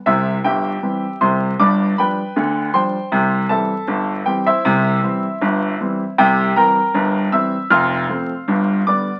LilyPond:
<<
  \new Staff \with { instrumentName = "Grand piano" } { \time 2/4 \key c \major \tempo 4 = 78 <e' c'' e''>8 <g' e'' g''>4 <c'' c'''>8 | <d'' b'' d'''>8 <b' g'' b''>4 <c'' g'' c'''>8~ | <c'' g'' c'''>8 <a' e'' a''>4 <g' g''>16 <e' c'' e''>16~ | <e' c'' e''>2 |
<g' e'' g''>8 <bes' g'' bes''>4 <e'' e'''>8 | <f'' c''' f'''>4. <d'' d'''>8 | }
  \new Staff \with { instrumentName = "Grand piano" } { \clef bass \time 2/4 \key c \major <c, c>8 <g,, g,>8 <e g c'>8 <c, c>8 | <g,, g,>8 <f g d'>8 <d, d>8 <f g d'>8 | <c, c>8 <e g c'>8 <g,, g,>8 <e g c'>8 | <c, c>8 <e g c'>8 <g,, g,>8 <e g c'>8 |
<c, c>8 <e g c'>8 <g,, g,>8 <e g c'>8 | <f,, f,>8 <f a c'>8 <g,, g,>8 <d g b>8 | }
>>